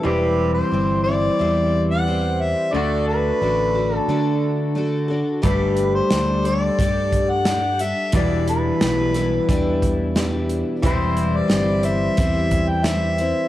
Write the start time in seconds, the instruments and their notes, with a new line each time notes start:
0.03 fingered electric bass E1, twelve-string acoustic guitar E3 G3 C4 E4, clean electric guitar G4, harmonica B4
0.54 harmonica C5
0.71 fingered electric bass G1, twelve-string acoustic guitar G3 C4 E4 C5
1.03 twelve-string acoustic guitar C5, harmonica D5
1.08 twelve-string acoustic guitar C4 E4
1.39 fingered electric bass E2, twelve-string acoustic guitar E3 G3 C4 E4 C5
1.91 harmonica F#5
2.07 twelve-string acoustic guitar G3 C4 E4 C5
2.42 harmonica E5
2.74 fingered electric bass D2, twelve-string acoustic guitar D3 A3 D4 F#4 A4, harmonica D5
3.08 harmonica B4
3.41 fingered electric bass A1, twelve-string acoustic guitar A3 D4 F#4 A4
3.75 twelve-string acoustic guitar D4 F#4 A4
3.96 harmonica A4
4.08 fingered electric bass D3, twelve-string acoustic guitar D3 A3 D4 F#4 A4
4.75 twelve-string acoustic guitar A3 D4 F#4 A4
5.08 twelve-string acoustic guitar D4 F#4 A4
5.42 fingered electric bass G1, twelve-string acoustic guitar G3 D4 G4 A4, clean electric guitar A3, harmonica B4, kick, closed hi-hat
5.77 closed hi-hat
5.95 harmonica C5
6.10 fingered electric bass D2, twelve-string acoustic guitar G3 D4 G4 A4, snare, closed hi-hat
6.43 twelve-string acoustic guitar D4 G4 A4, closed hi-hat
6.47 harmonica D5
6.78 fingered electric bass G2, twelve-string acoustic guitar G3 D4 G4 A4, kick, closed hi-hat
7.12 kick, closed hi-hat
7.31 harmonica F#5
7.45 twelve-string acoustic guitar G3 D4 G4 A4, snare, closed hi-hat
7.79 twelve-string acoustic guitar D4 G4 A4, harmonica E5, closed hi-hat
8.12 fingered electric bass E1, clean electric guitar E2 B2, twelve-string acoustic guitar E3 G3 D4 E4 B4, harmonica D5, kick, closed hi-hat
8.48 harmonica B4, closed hi-hat
8.81 fingered electric bass B1, twelve-string acoustic guitar G3 D4 E4 B4, snare, closed hi-hat
9.14 twelve-string acoustic guitar D4 E4 B4, snare, closed hi-hat
9.49 fingered electric bass E2, twelve-string acoustic guitar E3 G3 D4 E4 B4, kick, closed hi-hat
9.82 kick, closed hi-hat
10.15 twelve-string acoustic guitar G3 D4 E4 B4, snare, closed hi-hat
10.49 closed hi-hat
10.82 fingered electric bass E1, twelve-string acoustic guitar E3 G3 C4 E4 C5, harmonica C5, kick, closed hi-hat
11.17 closed hi-hat
11.37 harmonica D5
11.48 fingered electric bass G1, twelve-string acoustic guitar G3 C4 E4 C5, snare, closed hi-hat
11.83 twelve-string acoustic guitar C4 E4 C5, harmonica E5, closed hi-hat
12.17 fingered electric bass E2, twelve-string acoustic guitar E3 G3 C4 E4 C5, kick, closed hi-hat
12.51 kick, closed hi-hat
12.69 harmonica G5
12.84 twelve-string acoustic guitar G3 C4 E4 C5, harmonica E5, snare, closed hi-hat
13.18 twelve-string acoustic guitar E4 C5, closed hi-hat
13.23 twelve-string acoustic guitar C4